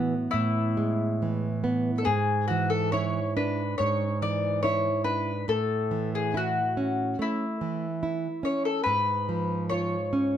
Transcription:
Already playing: nylon-string guitar A2 E3 B3, mandolin F#4
0.31 nylon-string guitar A2, mandolin E4
0.77 nylon-string guitar G#3
1.22 nylon-string guitar E3
1.64 nylon-string guitar B3
1.98 mandolin A4
2.05 nylon-string guitar G#2, mandolin G#4
2.48 nylon-string guitar E3, mandolin F#4
2.70 mandolin A4
2.92 nylon-string guitar E4, mandolin C#5
3.37 nylon-string guitar D4, mandolin B4
3.78 nylon-string guitar G#2, mandolin C#5
4.22 nylon-string guitar E3, mandolin D5
4.63 nylon-string guitar E4, mandolin C#5
5.04 nylon-string guitar D4, mandolin B4
5.48 nylon-string guitar A2, mandolin A4
5.91 nylon-string guitar E3
6.15 mandolin G#4
6.34 nylon-string guitar E4, mandolin F#4
6.77 nylon-string guitar C#4
7.19 nylon-string guitar A3, mandolin E4
7.61 nylon-string guitar E3
8.03 nylon-string guitar E4
8.43 nylon-string guitar C#4, mandolin C#5
8.65 mandolin A4
8.84 nylon-string guitar G#2, mandolin B4
9.29 nylon-string guitar F3
9.70 nylon-string guitar F4, mandolin C#5
10.13 nylon-string guitar C#4

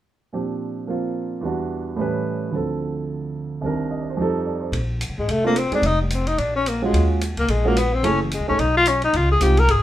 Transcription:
0.33 grand piano A#2 F3 C4 D4 G4
0.87 grand piano F3 A#3 C4 F4
1.41 grand piano E2 E3 G3
1.45 grand piano D4 F#4
1.96 grand piano A2 E3 G3 C#4
2.01 grand piano B4
2.51 grand piano D2 D3 F3 C4
2.55 grand piano A4
3.61 grand piano C2 C3 D#3 D4
3.66 grand piano A#4
3.91 grand piano D#5
4.01 grand piano D5
4.10 grand piano C5
4.17 grand piano F2 F3 G3 D#4
4.22 grand piano A4
4.46 grand piano D5
4.60 grand piano C5
4.72 upright bass A#1, ride
5.01 hi-hat pedal, ride
5.09 upright bass C2
5.18 upright bass A1, tenor saxophone G#3
5.28 upright bass F1, tenor saxophone A3, ride
5.44 grand piano A3 C4 D4 F4, tenor saxophone A#3
5.56 tenor saxophone C4, hi-hat pedal, ride
5.71 grand piano G#3 C4 D#4 G#4, tenor saxophone D4, muted upright bass stroke, ride
5.82 upright bass F1, ride
5.87 tenor saxophone D#4
6.01 tenor saxophone G3
6.10 tenor saxophone C4, hi-hat pedal, ride
6.27 tenor saxophone D#4, ride
6.38 upright bass A#1, tenor saxophone D4, ride
6.56 tenor saxophone C#4
6.66 tenor saxophone A#3, hi-hat pedal, ride
6.82 grand piano G#3 C#4 F4 F#4, tenor saxophone G#3
6.93 upright bass D#2, ride
7.21 hi-hat pedal, ride
7.37 upright bass C#2, tenor saxophone A#3, ride
7.48 upright bass A#1, tenor saxophone G#3, ride
7.65 grand piano G#3 C#4 F4 F#4, tenor saxophone A#3
7.77 tenor saxophone B3, hi-hat pedal, ride
7.94 tenor saxophone C4
8.03 upright bass F#1, grand piano A3 C#4 E4 G#4, tenor saxophone C#4, ride
8.22 tenor saxophone E3
8.31 tenor saxophone G#3, hi-hat pedal, ride
8.40 upright bass A1
8.48 upright bass A#1, grand piano A3 C#4 D#4 G#4, tenor saxophone C#4
8.59 upright bass B1, tenor saxophone D#4, ride
8.77 tenor saxophone F4
8.86 tenor saxophone C#4, hi-hat pedal, ride
9.02 tenor saxophone D#4, ride
9.13 upright bass C#2, tenor saxophone F4, ride
9.31 tenor saxophone G#4
9.41 upright bass C2, grand piano G#3 C4 D#4 F4, tenor saxophone G4, hi-hat pedal, ride
9.57 tenor saxophone A#4, ride
9.68 upright bass G#1, tenor saxophone G#4, ride

